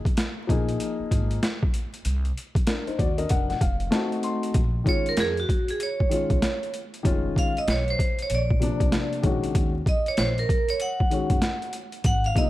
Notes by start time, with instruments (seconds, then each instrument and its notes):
0.05 kick, closed hi-hat
0.17 snare, closed hi-hat
0.47 upright bass A#1, grand piano F3 A#3 D#4 G#4, kick, closed hi-hat
0.69 closed hi-hat
0.80 closed hi-hat
1.00 muted upright bass stroke
1.11 upright bass G#1, kick, closed hi-hat
1.31 closed hi-hat
1.43 snare, closed hi-hat
1.63 kick
1.74 closed hi-hat
1.94 closed hi-hat
2.05 upright bass C2, closed hi-hat
2.25 closed hi-hat
2.38 closed hi-hat
2.55 kick, closed hi-hat
2.67 grand piano D4 A#4, snare, closed hi-hat
2.87 grand piano D#4 C5, muted upright bass stroke, closed hi-hat
2.98 upright bass D#2, grand piano F#4 D5, kick, closed hi-hat
3.18 grand piano D4 A#4 D#5, closed hi-hat
3.29 upright bass F1, grand piano F#5, kick, closed hi-hat
3.49 grand piano F#5, snare, closed hi-hat
3.61 upright bass F1, grand piano F5, kick, closed hi-hat
3.80 closed hi-hat
3.91 grand piano A3 C4 D#4 F#4 A5, snare, closed hi-hat
4.12 closed hi-hat
4.23 grand piano C6, closed hi-hat
4.43 closed hi-hat
4.54 upright bass A#1, kick, closed hi-hat
4.84 grand piano D#3 G#3 C#4 F4, kick, closed hi-hat
4.89 vibraphone C#5
5.06 vibraphone A#4, closed hi-hat
5.17 upright bass F2, vibraphone G#4, snare, closed hi-hat
5.37 vibraphone F#4, closed hi-hat
5.49 kick, closed hi-hat
5.68 vibraphone G#4, closed hi-hat
5.80 vibraphone C#5, closed hi-hat
6.00 kick
6.09 grand piano D#3 G#3 C#4 F4, closed hi-hat
6.30 upright bass C2, kick, closed hi-hat
6.42 snare, closed hi-hat
6.63 closed hi-hat
6.74 closed hi-hat
6.94 closed hi-hat
7.03 upright bass F1, grand piano D#3 G3 C#4 F4, kick, closed hi-hat
7.11 grand piano G#3
7.36 vibraphone F5, kick, closed hi-hat
7.57 vibraphone D#5, closed hi-hat
7.68 upright bass B1, vibraphone C#5, snare, closed hi-hat
7.88 vibraphone C5, closed hi-hat
7.99 kick, closed hi-hat
8.19 vibraphone C#5, closed hi-hat
8.30 upright bass A#1, closed hi-hat
8.35 vibraphone D5
8.50 kick
8.59 grand piano C3 F3 A#3 D4, closed hi-hat
8.80 upright bass C2, kick, closed hi-hat
8.92 snare, closed hi-hat
9.13 closed hi-hat
9.22 upright bass A#1, grand piano D#3 G#3 C#4 F#4, kick, closed hi-hat
9.44 closed hi-hat
9.55 upright bass D#2, kick, closed hi-hat
9.86 vibraphone D#5, kick, closed hi-hat
10.06 vibraphone C#5, closed hi-hat
10.17 upright bass A#1, vibraphone C5, snare, closed hi-hat
10.38 vibraphone A#4, closed hi-hat
10.49 kick, closed hi-hat
10.68 vibraphone C#5, closed hi-hat
10.80 vibraphone F#5, closed hi-hat
11.00 kick
11.10 grand piano D#3 G#3 C#4 F#4, closed hi-hat
11.30 upright bass F#1, kick, closed hi-hat
11.42 snare, closed hi-hat
11.62 closed hi-hat
11.73 closed hi-hat
11.92 closed hi-hat
12.04 upright bass G#1, vibraphone F#5, kick, closed hi-hat
12.24 vibraphone F5, closed hi-hat
12.35 grand piano C3 F3 A#3 D#4, vibraphone D#5, kick, closed hi-hat